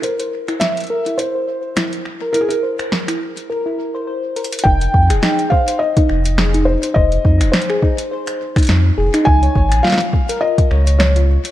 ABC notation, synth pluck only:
X:1
M:4/4
L:1/16
Q:"Swing 16ths" 1/4=104
K:Fm
V:1 name="Synth pluck"
c c z =E z2 B E z c c z E z2 B | =E z c c z E z2 B E B c c z B z | E z2 A E z c c z E z2 A E z c | c z E z2 A E z c c z E z2 A E |
z d d z F z2 B F z d d z F z2 |]